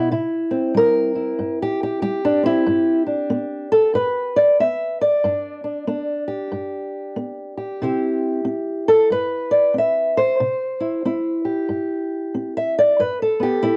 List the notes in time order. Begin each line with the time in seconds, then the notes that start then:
Already playing: B2 E4
0.11 C3 E4
0.51 C4
0.74 G3 A#4
1.15 E4
1.39 G2
1.62 G4
1.83 G4
2.02 G3 G4
2.25 D4
2.43 C4 E4
2.66 G2 G4
3.06 D4
3.30 B3
3.72 A4
3.94 G2 B4
4.36 D5
4.60 B3 E5
5.01 D5
5.24 G2 D4
5.64 D4
5.87 B3 D4
6.28 G4
6.52 G2
7.16 B3
7.57 G4
7.82 C3 C4 E4 G4
8.45 C4
8.88 A4
9.10 G2 B4
9.51 D5
9.74 C4
9.78 E5
10.17 C5
10.40 C3
10.80 E4
11.05 C4 E4
11.45 G4
11.69 G2
12.34 C4
12.57 E5
12.79 D5
12.99 G2 B4
13.22 A4
13.40 B3 G4
13.62 B3 E4